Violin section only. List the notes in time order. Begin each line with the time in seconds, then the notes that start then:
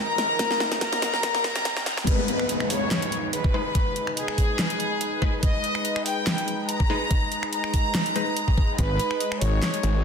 Already playing: A#4 A#5
0.81 A#4 A#5
2.07 B4
2.70 C#5
3.33 B4
4.17 G#4
5.43 D#5
6.06 G5
6.69 A#5
7.53 A#5
8.78 B4
9.41 C#5